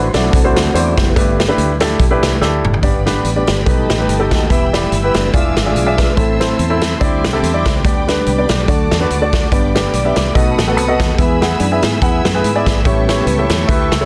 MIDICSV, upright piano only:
0, 0, Header, 1, 2, 480
1, 0, Start_track
1, 0, Key_signature, 1, "major"
1, 0, Tempo, 417246
1, 1340, Time_signature, 4, 2, 24, 8
1, 16165, End_track
2, 0, Start_track
2, 0, Title_t, "Upright piano"
2, 0, Program_c, 0, 0
2, 0, Note_on_c, 0, 50, 66
2, 117, Note_off_c, 0, 50, 0
2, 158, Note_on_c, 0, 57, 74
2, 160, Note_on_c, 0, 62, 68
2, 163, Note_on_c, 0, 64, 70
2, 163, Note_on_c, 0, 66, 67
2, 166, Note_on_c, 0, 74, 86
2, 402, Note_off_c, 0, 57, 0
2, 403, Note_off_c, 0, 62, 0
2, 404, Note_off_c, 0, 64, 0
2, 405, Note_off_c, 0, 66, 0
2, 406, Note_off_c, 0, 74, 0
2, 507, Note_on_c, 0, 57, 76
2, 508, Note_on_c, 0, 62, 70
2, 509, Note_on_c, 0, 66, 69
2, 510, Note_on_c, 0, 64, 67
2, 512, Note_on_c, 0, 72, 82
2, 770, Note_off_c, 0, 57, 0
2, 771, Note_off_c, 0, 62, 0
2, 772, Note_off_c, 0, 64, 0
2, 772, Note_off_c, 0, 66, 0
2, 773, Note_off_c, 0, 72, 0
2, 853, Note_on_c, 0, 57, 70
2, 854, Note_on_c, 0, 62, 58
2, 856, Note_on_c, 0, 64, 65
2, 856, Note_on_c, 0, 66, 66
2, 859, Note_on_c, 0, 72, 82
2, 1220, Note_off_c, 0, 57, 0
2, 1221, Note_off_c, 0, 62, 0
2, 1222, Note_off_c, 0, 64, 0
2, 1222, Note_off_c, 0, 66, 0
2, 1223, Note_off_c, 0, 72, 0
2, 1333, Note_on_c, 0, 57, 76
2, 1335, Note_on_c, 0, 43, 70
2, 1336, Note_on_c, 0, 62, 70
2, 1337, Note_on_c, 0, 67, 65
2, 1338, Note_on_c, 0, 64, 66
2, 1338, Note_on_c, 0, 71, 86
2, 1622, Note_off_c, 0, 57, 0
2, 1623, Note_off_c, 0, 62, 0
2, 1624, Note_off_c, 0, 64, 0
2, 1624, Note_off_c, 0, 67, 0
2, 1624, Note_off_c, 0, 71, 0
2, 1706, Note_on_c, 0, 62, 87
2, 1708, Note_on_c, 0, 57, 87
2, 1708, Note_on_c, 0, 64, 83
2, 1711, Note_on_c, 0, 67, 77
2, 1711, Note_on_c, 0, 71, 98
2, 1974, Note_off_c, 0, 62, 0
2, 1975, Note_off_c, 0, 57, 0
2, 1975, Note_off_c, 0, 64, 0
2, 1976, Note_off_c, 0, 67, 0
2, 1976, Note_off_c, 0, 71, 0
2, 2036, Note_off_c, 0, 43, 0
2, 2076, Note_on_c, 0, 62, 80
2, 2077, Note_on_c, 0, 57, 96
2, 2079, Note_on_c, 0, 64, 80
2, 2081, Note_on_c, 0, 67, 82
2, 2084, Note_on_c, 0, 69, 106
2, 2320, Note_off_c, 0, 62, 0
2, 2321, Note_off_c, 0, 57, 0
2, 2322, Note_off_c, 0, 64, 0
2, 2322, Note_off_c, 0, 67, 0
2, 2324, Note_off_c, 0, 69, 0
2, 2423, Note_on_c, 0, 57, 84
2, 2424, Note_on_c, 0, 62, 84
2, 2424, Note_on_c, 0, 64, 82
2, 2427, Note_on_c, 0, 67, 80
2, 2428, Note_on_c, 0, 71, 92
2, 2688, Note_off_c, 0, 57, 0
2, 2688, Note_off_c, 0, 62, 0
2, 2688, Note_off_c, 0, 64, 0
2, 2690, Note_off_c, 0, 67, 0
2, 2690, Note_off_c, 0, 71, 0
2, 2774, Note_on_c, 0, 62, 76
2, 2775, Note_on_c, 0, 57, 79
2, 2775, Note_on_c, 0, 67, 78
2, 2777, Note_on_c, 0, 64, 73
2, 2778, Note_on_c, 0, 69, 88
2, 3141, Note_off_c, 0, 57, 0
2, 3141, Note_off_c, 0, 62, 0
2, 3141, Note_off_c, 0, 67, 0
2, 3142, Note_off_c, 0, 64, 0
2, 3142, Note_off_c, 0, 69, 0
2, 3254, Note_on_c, 0, 59, 77
2, 3254, Note_on_c, 0, 62, 69
2, 3255, Note_on_c, 0, 43, 62
2, 3256, Note_on_c, 0, 67, 70
2, 3258, Note_on_c, 0, 74, 83
2, 3451, Note_off_c, 0, 59, 0
2, 3451, Note_off_c, 0, 62, 0
2, 3451, Note_off_c, 0, 67, 0
2, 3452, Note_off_c, 0, 74, 0
2, 3519, Note_on_c, 0, 59, 80
2, 3519, Note_on_c, 0, 67, 75
2, 3521, Note_on_c, 0, 62, 75
2, 3523, Note_on_c, 0, 71, 84
2, 3762, Note_off_c, 0, 59, 0
2, 3762, Note_off_c, 0, 67, 0
2, 3763, Note_off_c, 0, 62, 0
2, 3764, Note_off_c, 0, 71, 0
2, 3865, Note_on_c, 0, 59, 64
2, 3865, Note_on_c, 0, 62, 57
2, 3866, Note_on_c, 0, 67, 58
2, 3868, Note_on_c, 0, 74, 72
2, 3958, Note_off_c, 0, 43, 0
2, 4130, Note_off_c, 0, 59, 0
2, 4130, Note_off_c, 0, 62, 0
2, 4130, Note_off_c, 0, 67, 0
2, 4131, Note_off_c, 0, 74, 0
2, 4208, Note_on_c, 0, 57, 71
2, 4210, Note_on_c, 0, 47, 57
2, 4211, Note_on_c, 0, 63, 61
2, 4211, Note_on_c, 0, 67, 60
2, 4216, Note_on_c, 0, 71, 71
2, 4500, Note_off_c, 0, 57, 0
2, 4502, Note_off_c, 0, 63, 0
2, 4502, Note_off_c, 0, 67, 0
2, 4504, Note_off_c, 0, 71, 0
2, 4584, Note_on_c, 0, 57, 61
2, 4585, Note_on_c, 0, 63, 66
2, 4589, Note_on_c, 0, 67, 65
2, 4590, Note_on_c, 0, 71, 72
2, 4757, Note_off_c, 0, 57, 0
2, 4758, Note_off_c, 0, 63, 0
2, 4760, Note_off_c, 0, 67, 0
2, 4760, Note_off_c, 0, 71, 0
2, 4825, Note_on_c, 0, 57, 75
2, 4828, Note_on_c, 0, 63, 64
2, 4828, Note_on_c, 0, 67, 66
2, 4829, Note_on_c, 0, 69, 78
2, 4916, Note_off_c, 0, 47, 0
2, 5090, Note_off_c, 0, 57, 0
2, 5092, Note_off_c, 0, 63, 0
2, 5092, Note_off_c, 0, 67, 0
2, 5093, Note_off_c, 0, 69, 0
2, 5172, Note_on_c, 0, 59, 68
2, 5174, Note_on_c, 0, 64, 61
2, 5176, Note_on_c, 0, 52, 63
2, 5177, Note_on_c, 0, 67, 60
2, 5177, Note_on_c, 0, 76, 76
2, 5371, Note_off_c, 0, 59, 0
2, 5372, Note_off_c, 0, 64, 0
2, 5374, Note_off_c, 0, 67, 0
2, 5374, Note_off_c, 0, 76, 0
2, 5440, Note_on_c, 0, 59, 68
2, 5443, Note_on_c, 0, 64, 59
2, 5445, Note_on_c, 0, 67, 68
2, 5445, Note_on_c, 0, 74, 73
2, 5684, Note_off_c, 0, 59, 0
2, 5686, Note_off_c, 0, 64, 0
2, 5687, Note_off_c, 0, 67, 0
2, 5687, Note_off_c, 0, 74, 0
2, 5792, Note_on_c, 0, 64, 58
2, 5793, Note_on_c, 0, 59, 66
2, 5795, Note_on_c, 0, 67, 63
2, 5798, Note_on_c, 0, 71, 77
2, 5880, Note_off_c, 0, 52, 0
2, 6055, Note_off_c, 0, 59, 0
2, 6055, Note_off_c, 0, 64, 0
2, 6057, Note_off_c, 0, 67, 0
2, 6058, Note_off_c, 0, 71, 0
2, 6138, Note_on_c, 0, 62, 75
2, 6140, Note_on_c, 0, 65, 70
2, 6141, Note_on_c, 0, 52, 60
2, 6141, Note_on_c, 0, 68, 63
2, 6145, Note_on_c, 0, 76, 75
2, 6427, Note_off_c, 0, 62, 0
2, 6428, Note_off_c, 0, 65, 0
2, 6429, Note_off_c, 0, 68, 0
2, 6431, Note_off_c, 0, 76, 0
2, 6510, Note_on_c, 0, 62, 67
2, 6512, Note_on_c, 0, 65, 66
2, 6512, Note_on_c, 0, 68, 61
2, 6514, Note_on_c, 0, 76, 72
2, 6683, Note_off_c, 0, 62, 0
2, 6683, Note_off_c, 0, 65, 0
2, 6683, Note_off_c, 0, 68, 0
2, 6684, Note_off_c, 0, 76, 0
2, 6744, Note_on_c, 0, 62, 72
2, 6745, Note_on_c, 0, 65, 67
2, 6747, Note_on_c, 0, 76, 86
2, 6750, Note_on_c, 0, 68, 71
2, 6844, Note_off_c, 0, 52, 0
2, 7012, Note_off_c, 0, 62, 0
2, 7012, Note_off_c, 0, 65, 0
2, 7013, Note_off_c, 0, 76, 0
2, 7015, Note_off_c, 0, 68, 0
2, 7099, Note_on_c, 0, 60, 63
2, 7100, Note_on_c, 0, 64, 63
2, 7101, Note_on_c, 0, 45, 58
2, 7104, Note_on_c, 0, 69, 57
2, 7106, Note_on_c, 0, 76, 77
2, 7297, Note_off_c, 0, 60, 0
2, 7297, Note_off_c, 0, 64, 0
2, 7299, Note_off_c, 0, 69, 0
2, 7300, Note_off_c, 0, 76, 0
2, 7363, Note_on_c, 0, 60, 70
2, 7363, Note_on_c, 0, 64, 64
2, 7365, Note_on_c, 0, 69, 64
2, 7365, Note_on_c, 0, 72, 76
2, 7607, Note_off_c, 0, 60, 0
2, 7607, Note_off_c, 0, 64, 0
2, 7608, Note_off_c, 0, 69, 0
2, 7608, Note_off_c, 0, 72, 0
2, 7706, Note_on_c, 0, 60, 83
2, 7707, Note_on_c, 0, 64, 79
2, 7711, Note_on_c, 0, 76, 83
2, 7712, Note_on_c, 0, 69, 72
2, 7804, Note_off_c, 0, 45, 0
2, 7974, Note_off_c, 0, 60, 0
2, 7974, Note_off_c, 0, 64, 0
2, 7976, Note_off_c, 0, 76, 0
2, 7977, Note_off_c, 0, 69, 0
2, 8056, Note_on_c, 0, 60, 85
2, 8058, Note_on_c, 0, 67, 77
2, 8059, Note_on_c, 0, 50, 70
2, 8060, Note_on_c, 0, 64, 76
2, 8063, Note_on_c, 0, 74, 93
2, 8348, Note_off_c, 0, 60, 0
2, 8349, Note_off_c, 0, 67, 0
2, 8350, Note_off_c, 0, 64, 0
2, 8351, Note_off_c, 0, 74, 0
2, 8429, Note_on_c, 0, 60, 83
2, 8431, Note_on_c, 0, 64, 77
2, 8432, Note_on_c, 0, 67, 78
2, 8435, Note_on_c, 0, 69, 96
2, 8603, Note_off_c, 0, 60, 0
2, 8604, Note_off_c, 0, 64, 0
2, 8605, Note_off_c, 0, 67, 0
2, 8606, Note_off_c, 0, 69, 0
2, 8667, Note_on_c, 0, 60, 73
2, 8671, Note_on_c, 0, 67, 69
2, 8672, Note_on_c, 0, 64, 65
2, 8674, Note_on_c, 0, 74, 84
2, 8764, Note_off_c, 0, 50, 0
2, 8935, Note_off_c, 0, 60, 0
2, 8937, Note_off_c, 0, 64, 0
2, 8937, Note_off_c, 0, 67, 0
2, 8938, Note_off_c, 0, 74, 0
2, 9022, Note_on_c, 0, 59, 69
2, 9024, Note_on_c, 0, 62, 60
2, 9027, Note_on_c, 0, 50, 60
2, 9027, Note_on_c, 0, 67, 65
2, 9029, Note_on_c, 0, 74, 73
2, 9220, Note_off_c, 0, 59, 0
2, 9220, Note_off_c, 0, 62, 0
2, 9222, Note_off_c, 0, 67, 0
2, 9223, Note_off_c, 0, 74, 0
2, 9287, Note_on_c, 0, 59, 68
2, 9289, Note_on_c, 0, 62, 62
2, 9289, Note_on_c, 0, 67, 59
2, 9294, Note_on_c, 0, 71, 76
2, 9530, Note_off_c, 0, 59, 0
2, 9532, Note_off_c, 0, 62, 0
2, 9532, Note_off_c, 0, 67, 0
2, 9534, Note_off_c, 0, 71, 0
2, 9637, Note_on_c, 0, 59, 64
2, 9643, Note_on_c, 0, 62, 61
2, 9644, Note_on_c, 0, 67, 58
2, 9645, Note_on_c, 0, 74, 74
2, 9728, Note_off_c, 0, 50, 0
2, 9900, Note_off_c, 0, 59, 0
2, 9903, Note_off_c, 0, 62, 0
2, 9904, Note_off_c, 0, 67, 0
2, 9904, Note_off_c, 0, 74, 0
2, 9985, Note_on_c, 0, 57, 69
2, 9986, Note_on_c, 0, 50, 63
2, 9986, Note_on_c, 0, 62, 64
2, 9986, Note_on_c, 0, 66, 67
2, 9992, Note_on_c, 0, 74, 75
2, 10273, Note_off_c, 0, 57, 0
2, 10274, Note_off_c, 0, 62, 0
2, 10274, Note_off_c, 0, 66, 0
2, 10277, Note_off_c, 0, 74, 0
2, 10355, Note_on_c, 0, 57, 67
2, 10356, Note_on_c, 0, 62, 64
2, 10356, Note_on_c, 0, 66, 66
2, 10360, Note_on_c, 0, 71, 80
2, 10527, Note_off_c, 0, 57, 0
2, 10528, Note_off_c, 0, 62, 0
2, 10528, Note_off_c, 0, 66, 0
2, 10530, Note_off_c, 0, 71, 0
2, 10601, Note_on_c, 0, 57, 76
2, 10602, Note_on_c, 0, 62, 64
2, 10607, Note_on_c, 0, 66, 63
2, 10607, Note_on_c, 0, 74, 82
2, 10688, Note_off_c, 0, 50, 0
2, 10862, Note_off_c, 0, 57, 0
2, 10863, Note_off_c, 0, 62, 0
2, 10865, Note_off_c, 0, 66, 0
2, 10865, Note_off_c, 0, 74, 0
2, 10949, Note_on_c, 0, 67, 65
2, 10950, Note_on_c, 0, 59, 65
2, 10950, Note_on_c, 0, 62, 62
2, 10952, Note_on_c, 0, 43, 59
2, 10953, Note_on_c, 0, 74, 68
2, 11144, Note_off_c, 0, 59, 0
2, 11144, Note_off_c, 0, 62, 0
2, 11144, Note_off_c, 0, 67, 0
2, 11145, Note_off_c, 0, 74, 0
2, 11211, Note_on_c, 0, 62, 57
2, 11212, Note_on_c, 0, 59, 67
2, 11216, Note_on_c, 0, 74, 70
2, 11217, Note_on_c, 0, 67, 69
2, 11453, Note_off_c, 0, 62, 0
2, 11454, Note_off_c, 0, 59, 0
2, 11456, Note_off_c, 0, 67, 0
2, 11456, Note_off_c, 0, 74, 0
2, 11558, Note_on_c, 0, 59, 65
2, 11559, Note_on_c, 0, 62, 62
2, 11562, Note_on_c, 0, 67, 62
2, 11563, Note_on_c, 0, 76, 70
2, 11651, Note_off_c, 0, 43, 0
2, 11821, Note_off_c, 0, 59, 0
2, 11822, Note_off_c, 0, 62, 0
2, 11823, Note_off_c, 0, 67, 0
2, 11823, Note_off_c, 0, 76, 0
2, 11901, Note_on_c, 0, 59, 72
2, 11901, Note_on_c, 0, 66, 66
2, 11903, Note_on_c, 0, 47, 61
2, 11904, Note_on_c, 0, 69, 61
2, 11904, Note_on_c, 0, 75, 78
2, 12191, Note_off_c, 0, 59, 0
2, 12191, Note_off_c, 0, 66, 0
2, 12193, Note_off_c, 0, 69, 0
2, 12193, Note_off_c, 0, 75, 0
2, 12274, Note_on_c, 0, 59, 72
2, 12276, Note_on_c, 0, 66, 62
2, 12278, Note_on_c, 0, 69, 64
2, 12280, Note_on_c, 0, 78, 78
2, 12447, Note_off_c, 0, 59, 0
2, 12448, Note_off_c, 0, 66, 0
2, 12449, Note_off_c, 0, 69, 0
2, 12450, Note_off_c, 0, 78, 0
2, 12512, Note_on_c, 0, 59, 80
2, 12513, Note_on_c, 0, 66, 70
2, 12516, Note_on_c, 0, 69, 66
2, 12520, Note_on_c, 0, 75, 83
2, 12606, Note_off_c, 0, 47, 0
2, 12778, Note_off_c, 0, 59, 0
2, 12778, Note_off_c, 0, 66, 0
2, 12780, Note_off_c, 0, 69, 0
2, 12782, Note_off_c, 0, 75, 0
2, 12865, Note_on_c, 0, 59, 72
2, 12869, Note_on_c, 0, 52, 64
2, 12869, Note_on_c, 0, 64, 61
2, 12872, Note_on_c, 0, 76, 74
2, 12873, Note_on_c, 0, 68, 65
2, 13061, Note_off_c, 0, 59, 0
2, 13063, Note_off_c, 0, 64, 0
2, 13065, Note_off_c, 0, 68, 0
2, 13065, Note_off_c, 0, 76, 0
2, 13128, Note_on_c, 0, 59, 68
2, 13130, Note_on_c, 0, 64, 70
2, 13135, Note_on_c, 0, 68, 71
2, 13136, Note_on_c, 0, 78, 77
2, 13371, Note_off_c, 0, 59, 0
2, 13372, Note_off_c, 0, 64, 0
2, 13374, Note_off_c, 0, 68, 0
2, 13375, Note_off_c, 0, 78, 0
2, 13476, Note_on_c, 0, 59, 64
2, 13477, Note_on_c, 0, 64, 58
2, 13480, Note_on_c, 0, 68, 67
2, 13484, Note_on_c, 0, 76, 75
2, 13569, Note_off_c, 0, 52, 0
2, 13739, Note_off_c, 0, 59, 0
2, 13740, Note_off_c, 0, 64, 0
2, 13742, Note_off_c, 0, 68, 0
2, 13743, Note_off_c, 0, 76, 0
2, 13824, Note_on_c, 0, 59, 80
2, 13825, Note_on_c, 0, 64, 71
2, 13829, Note_on_c, 0, 68, 71
2, 13829, Note_on_c, 0, 78, 84
2, 14112, Note_off_c, 0, 59, 0
2, 14113, Note_off_c, 0, 64, 0
2, 14115, Note_off_c, 0, 68, 0
2, 14115, Note_off_c, 0, 78, 0
2, 14198, Note_on_c, 0, 59, 73
2, 14198, Note_on_c, 0, 64, 65
2, 14202, Note_on_c, 0, 71, 83
2, 14204, Note_on_c, 0, 68, 72
2, 14368, Note_off_c, 0, 59, 0
2, 14368, Note_off_c, 0, 64, 0
2, 14370, Note_off_c, 0, 71, 0
2, 14371, Note_off_c, 0, 68, 0
2, 14441, Note_on_c, 0, 59, 74
2, 14443, Note_on_c, 0, 64, 67
2, 14445, Note_on_c, 0, 68, 70
2, 14445, Note_on_c, 0, 74, 87
2, 14701, Note_off_c, 0, 59, 0
2, 14702, Note_off_c, 0, 64, 0
2, 14703, Note_off_c, 0, 68, 0
2, 14703, Note_off_c, 0, 74, 0
2, 14787, Note_on_c, 0, 57, 74
2, 14790, Note_on_c, 0, 64, 60
2, 14791, Note_on_c, 0, 45, 66
2, 14792, Note_on_c, 0, 67, 70
2, 14793, Note_on_c, 0, 73, 76
2, 14981, Note_off_c, 0, 57, 0
2, 14983, Note_off_c, 0, 64, 0
2, 14984, Note_off_c, 0, 67, 0
2, 14984, Note_off_c, 0, 73, 0
2, 15054, Note_on_c, 0, 57, 73
2, 15057, Note_on_c, 0, 67, 68
2, 15059, Note_on_c, 0, 64, 68
2, 15059, Note_on_c, 0, 73, 88
2, 15293, Note_off_c, 0, 57, 0
2, 15294, Note_off_c, 0, 67, 0
2, 15295, Note_off_c, 0, 64, 0
2, 15296, Note_off_c, 0, 73, 0
2, 15399, Note_on_c, 0, 57, 66
2, 15400, Note_on_c, 0, 64, 67
2, 15403, Note_on_c, 0, 67, 64
2, 15405, Note_on_c, 0, 76, 75
2, 15488, Note_off_c, 0, 45, 0
2, 15659, Note_off_c, 0, 57, 0
2, 15660, Note_off_c, 0, 64, 0
2, 15661, Note_off_c, 0, 67, 0
2, 15662, Note_off_c, 0, 76, 0
2, 15745, Note_on_c, 0, 57, 82
2, 15746, Note_on_c, 0, 67, 72
2, 15747, Note_on_c, 0, 64, 72
2, 15749, Note_on_c, 0, 71, 81
2, 16031, Note_off_c, 0, 57, 0
2, 16032, Note_off_c, 0, 64, 0
2, 16032, Note_off_c, 0, 67, 0
2, 16033, Note_off_c, 0, 71, 0
2, 16115, Note_on_c, 0, 57, 75
2, 16119, Note_on_c, 0, 64, 65
2, 16119, Note_on_c, 0, 67, 69
2, 16119, Note_on_c, 0, 73, 83
2, 16165, Note_off_c, 0, 57, 0
2, 16165, Note_off_c, 0, 64, 0
2, 16165, Note_off_c, 0, 67, 0
2, 16165, Note_off_c, 0, 73, 0
2, 16165, End_track
0, 0, End_of_file